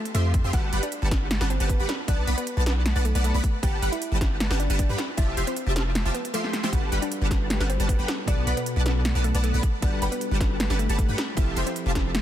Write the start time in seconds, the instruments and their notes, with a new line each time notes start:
0.05 closed hi-hat
0.14 808-style bass F2, supersaw synth F3 F4 G4 E5 C6, synth pluck A3 A4, closed hi-hat
0.34 kick, closed hi-hat
0.44 808-style bass F2, supersaw synth F3 F4 G4 E5 C6
0.53 808-style bass G1, supersaw synth G3 G4 B4 F#5 A5, synth pluck F#4 F#5, kick, closed hi-hat
0.73 808-style bass G1, supersaw synth G3 G4 B4 F#5 B5, closed hi-hat
0.83 synth pluck D4 D5, closed hi-hat
0.92 closed hi-hat
1.02 808-style bass G1, supersaw synth G3 G4 B4 F#5 A5
1.11 kick, snare, closed hi-hat
1.31 snare, closed hi-hat
1.41 808-style bass G1, supersaw synth G3 G4 B4 F#5 A5, snare
1.50 synth pluck C4 C5, closed hi-hat
1.60 808-style bass G1, supersaw synth G3 G4 B4 F#5 A5, closed hi-hat
1.69 synth pluck B3 B4, kick, closed hi-hat
1.80 808-style bass G1, supersaw synth G3 G4 B4 F#5 B5
1.89 snare, closed hi-hat
2.08 808-style bass B1, supersaw synth B3 B4 D5 F#5 A5, synth pluck D4 D5, kick, closed hi-hat
2.27 808-style bass B1, supersaw synth B3 B4 D5 F#5 B5, closed hi-hat
2.38 synth pluck B3 B4, closed hi-hat
2.47 closed hi-hat
2.57 808-style bass B1, supersaw synth B3 B4 D5 F#5 A5
2.66 snare, closed hi-hat
2.86 snare, closed hi-hat
2.96 808-style bass B1, supersaw synth B3 B4 D5 F#5 A5
3.05 synth pluck A3 A4, closed hi-hat
3.15 808-style bass B1, supersaw synth B3 B4 D5 F#5 A5, closed hi-hat
3.24 synth pluck A3 A4, closed hi-hat
3.34 808-style bass B1, supersaw synth B3 B4 D5 F#5 B5
3.44 kick, closed hi-hat
3.63 808-style bass G1, supersaw synth G3 G4 B4 F#5 A5, synth pluck G4 G5, kick, closed hi-hat
3.82 808-style bass G1, supersaw synth G3 G4 B4 F#5 B5, closed hi-hat
3.92 synth pluck E4 E5, closed hi-hat
4.02 closed hi-hat
4.12 808-style bass G1, supersaw synth G3 G4 B4 F#5 A5
4.21 kick, snare, closed hi-hat
4.40 snare, closed hi-hat
4.50 808-style bass G1, supersaw synth G3 G4 B4 F#5 A5, snare
4.60 synth pluck D4 D5, closed hi-hat
4.70 808-style bass G1, supersaw synth G3 G4 B4 F#5 A5, closed hi-hat
4.79 synth pluck D4 D5, kick, closed hi-hat
4.89 808-style bass G2, supersaw synth G3 G4 B4 F#5 B5
4.98 snare, closed hi-hat
5.17 808-style bass F1, supersaw synth F3 F4 G4 E5 A5, synth pluck E4 E5, kick, closed hi-hat
5.37 808-style bass F1, supersaw synth F3 F4 G4 E5 C6, closed hi-hat
5.47 synth pluck C4 C5, closed hi-hat
5.56 closed hi-hat
5.67 808-style bass F1, supersaw synth F3 F4 G4 E5 A5
5.76 snare, closed hi-hat
5.95 snare, closed hi-hat
6.05 808-style bass F1, supersaw synth F3 F4 G4 E5 A5
6.14 synth pluck B3 B4, closed hi-hat
6.25 closed hi-hat
6.34 supersaw synth F3 F4 G4 E5 C6, synth pluck A3 A4, closed hi-hat
6.44 snare
6.53 snare, closed hi-hat
6.63 supersaw synth F3 F4 G4 E5 C6, snare
6.71 808-style bass G1, tine electric piano G3 D4 F#4 A4 B4, supersaw synth G3 G4 B4 F#5, synth pluck F#4 F#5, kick, closed hi-hat
6.92 808-style bass G1, supersaw synth G3 G4 B4 F#5 B5, closed hi-hat
7.02 synth pluck D4 D5, closed hi-hat
7.12 closed hi-hat
7.21 808-style bass G1, supersaw synth G3 G4 B4 F#5 A5
7.29 tine electric piano G3 D4 F#4 A4, kick, snare, closed hi-hat
7.33 tine electric piano B4
7.50 snare, closed hi-hat
7.60 808-style bass G1, supersaw synth G3 G4 B4 F#5 A5, snare
7.70 synth pluck C4 C5, closed hi-hat
7.80 808-style bass G1, supersaw synth G3 G4 B4 F#5 A5, closed hi-hat
7.89 synth pluck B3 B4, kick, closed hi-hat
7.99 808-style bass G1, supersaw synth G3 G4 B4 F#5 B5
8.08 snare, closed hi-hat
8.26 808-style bass B1, tine electric piano B2 B3 F#4 A4 D5, supersaw synth B3 B4 D5 F#5 A5, synth pluck D4 D5, kick, closed hi-hat
8.47 808-style bass B1, supersaw synth B3 B4 D5 F#5 B5, closed hi-hat
8.57 synth pluck B3 B4, closed hi-hat
8.66 closed hi-hat
8.76 808-style bass B1, supersaw synth B3 B4 D5 F#5 A5
8.85 tine electric piano B2 B3 F#4 A4 D5, snare, closed hi-hat
9.05 snare, closed hi-hat
9.15 808-style bass B1, supersaw synth B3 B4 D5 F#5 A5
9.24 synth pluck A3 A4, closed hi-hat
9.34 808-style bass B1, supersaw synth B3 B4 D5 F#5 A5, closed hi-hat
9.44 synth pluck A3 A4, closed hi-hat
9.54 808-style bass B1, supersaw synth B3 B4 D5 F#5 B5
9.63 kick, closed hi-hat
9.80 808-style bass G1, tine electric piano G3 D4 F#4 A4, supersaw synth G3 G4 B4 F#5 A5, synth pluck D4 D5, kick, closed hi-hat
9.85 tine electric piano B4
10.02 808-style bass G1, supersaw synth G3 G4 B4 F#5 B5, closed hi-hat
10.12 synth pluck B3 B4, closed hi-hat
10.21 closed hi-hat
10.31 808-style bass G1, supersaw synth G3 G4 B4 F#5 A5
10.38 tine electric piano G3 D4 F#4 A4 B4, kick, snare, closed hi-hat
10.60 snare, closed hi-hat
10.70 808-style bass G1, supersaw synth G3 G4 B4 F#5 A5, snare
10.79 synth pluck A3 A4, closed hi-hat
10.89 808-style bass G1, supersaw synth G3 G4 B4 F#5 A5, closed hi-hat
10.98 synth pluck A3 A4, kick, closed hi-hat
11.09 808-style bass G2, supersaw synth G3 G4 B4 F#5 B5
11.18 snare, closed hi-hat
11.35 808-style bass F1, tine electric piano F3 C4 E4 G4 A4, supersaw synth F3 F4 G4 E5 A5, synth pluck E4 E5, kick, closed hi-hat
11.56 808-style bass F1, supersaw synth F3 F4 G4 E5 C6, closed hi-hat
11.66 synth pluck C4 C5, closed hi-hat
11.76 closed hi-hat
11.86 808-style bass F1, supersaw synth F3 F4 G4 E5 A5
11.94 tine electric piano F3 C4 E4 G4 A4, kick, snare, closed hi-hat
12.15 snare, closed hi-hat